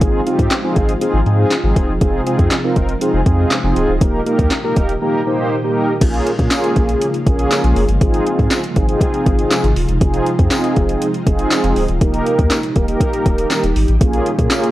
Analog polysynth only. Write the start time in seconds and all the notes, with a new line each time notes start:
0.01 C4 D#4 F4 G#4
0.26 C4 D#4 F4 G4
0.64 C4 D#4 F4 G#4
1.01 C4 D#4 F4 G#4
1.26 C4 D#4 F4 G#4
1.64 C4 D#4 F4 G#4
2.01 C4 D#4 F4 G#4
2.26 C4 D#4 F4 G#4
2.64 C4 D#4 F4 A#4
3.01 C4 D#4 F4 G#4
3.26 C4 D#4 F4 G#4
3.64 C4 D#4 F4 G#4
4.01 A#3 D#4 G4 A#4
4.26 A#3 D#4 G4 A#4
4.64 A#3 D#4 G4 A#4
5.01 A#3 D#4 G4 A#4
5.26 A#3 D#4 G4 C5
5.64 A#3 D#4 G4 A#4
6.01 A#3 C#4 F4 G#4
6.39 A#3 C#4 F4 G#4
7.26 A#3 C#4 F4 G#4
8.01 C4 D#4 F4 G#4
8.76 C4 D#4 F4 G#4
8.89 C4 D#4 F4 G#4
10.01 C4 D#4 F4 G#4
10.39 C4 D#4 F4 G#4
11.26 C4 D#4 F4 G#4
12.01 A#3 D#4 G4 A#4
12.76 A#3 D#4 G4 A#4
12.88 A#3 D#4 G4 A#4
14.01 A#3 C#4 F4 G#4
14.38 A#3 C#4 F4 G#4